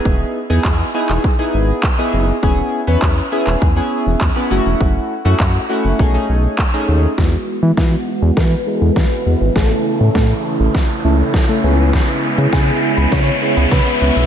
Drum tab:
HH |----------------|----------------|----------------|----------------|
SH |----------------|----------------|----------------|----------------|
CP |----x--x----x---|----x--x----x---|----x-------x---|----------------|
SD |----------------|----------------|----------------|o---o---o---o---|
BD |o---o---o---o---|o---o---o---o---|o---o---o---o---|o---o---o---o---|

HH |----------------|xx-xxx-xxx-xxx-x|
SH |----------------|xxxxxxxxxxxxxxxx|
CP |----------------|----------------|
SD |o---o---o---o---|o---o---o---o---|
BD |o---o---o---o---|o---o---o---o---|